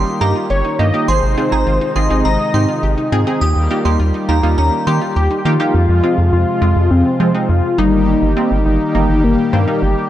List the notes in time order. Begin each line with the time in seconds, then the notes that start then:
Already playing: D#3 G3 A#3 G4 C6
0.21 G2 A#3 D#4 G4 A#5
0.35 F4
0.50 G1 G4 C#5
0.65 D#4
0.79 G2 A#3 D#4 F4 G4 D#5
0.94 A#3 D#4 G4
1.08 G#1 C3 G#3 D#4 G#4 C5 C6
1.23 G#1
1.37 C4 D#4 F4 G#4
1.52 G#1 C4 D#4 G#4 A#5
1.66 G#1 F4
1.81 D#4
1.96 G#1 C4 D#4 F4 G#4 D#5 C6
2.10 G#1 C4 D#4 G#4
2.25 G#1 C4 D#5 A#5
2.54 G#2 C4 D#4 G4 C6
2.69 F4
2.83 G#1 G4
2.98 D#4
3.12 G#2 C4 D#4 F4 G#4
3.27 C4 D#4 G4 G#4
3.41 D#2 G3 A#3 G4 D#6
3.56 D#2
3.71 A#3 D#4 F4 G4
3.85 D#2 A#3 D#4 G4 C6
4.00 D#2 F4
4.14 D#4
4.29 D#2 A#3 D#4 F4 G4 A#5
4.43 D#2 A#3 D#4 F4
4.58 D#2 C#4 A#5
4.87 D#3 A#3 D#4 G4 C6
5.02 F4
5.16 D#2 G4
5.31 D#4
5.38 G4
5.45 D#3 A#3 D#4 F4 G4
5.60 A#3 D#4 G4
5.74 F2 C3 F3 G#3 F4
5.89 F2
6.03 G#3 C4 F4
6.18 F2
6.33 F2 F4
6.62 F2 G#3 C4 F4
6.76 F2
6.91 F2 C4
7.20 F3 G#3 C4 F4
7.34 G#3 C4 D#4
7.49 F2 F4
7.78 G1 D#3 G3 A#3 D#4 G4
8.22 G1
8.37 G3 A#3 C4
8.51 G1
8.66 G1 D#4
8.95 G1 G3 A#3 D#4
9.09 G1
9.24 G1 A#3
9.53 G2 G3 A#3 C4
9.68 G3 A#3 D#4
9.82 G1 G4